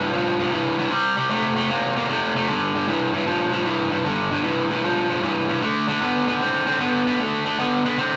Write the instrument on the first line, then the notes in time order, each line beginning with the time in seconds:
overdriven electric guitar
0.00 G2 E3
0.13 G2 F3
0.39 G2 F3
0.51 G2 E3
0.78 G2 E3
0.91 C3 G3
1.16 C3 G3
1.30 C3 A3
1.56 C3 A3
1.70 C3 A#3
1.96 C3 A#3
2.09 C3 A3
2.36 C3 A3
2.48 G2 D3
2.74 G2 D3
2.88 G2 E3
3.13 G2 E3
3.26 G2 F3
3.52 G2 F3
3.65 G2 E3
3.91 G2 E3
4.05 G2 D3
4.31 G2 D3
4.44 G2 E3
4.70 G2 E3
4.84 G2 F3
5.10 G2 F3
5.22 G2 E3
5.49 G2 E3
5.62 D3 A3
5.88 D3 A3
6.01 D3 B3
6.27 D3 B3
6.41 D3 C4
6.67 D3 C4
6.80 D3 B3
7.06 D3 B3
7.19 D3 A3
7.45 D3 A3
7.59 D3 B3
7.85 D3 B3
7.98 D3 C4